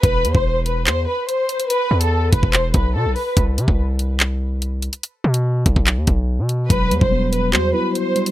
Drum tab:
HH |x-x---x-x---x-xx|x--x--x-x-x---o-|x-x---x-x---x-xx|x--x--x-x-x---x-|
CP |--------x-------|--------x-------|--------x-------|--------x-------|
BD |o--o------------|------oo--o-----|o--o------------|------oo--o-----|

HH |x-x---x-x---x-xx|
CP |--------x-------|
BD |o--o------------|